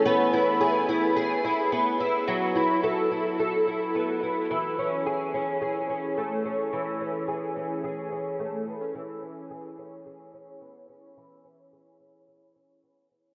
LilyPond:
\new Staff \with { instrumentName = "Twelve-string acoustic guitar" } { \time 4/4 \key a \major \tempo 4 = 108 b8 e'8 gis'8 e'8 gis'8 e'8 b8 e'8 | fis8 e'8 a'8 e'8 a'8 e'8 b8 e'8 | e8 cis'8 gis'8 cis'8 gis'8 cis'8 a8 cis'8 | e8 cis'8 gis'8 cis'8 gis'8 cis'8 a8 b16 cis'16 |
e8 cis'8 gis'8 cis'8 gis'8 cis'8 b8 cis'8 | e8 cis'8 gis'8 cis'8 gis'8 cis'8 b8 cis'8 | }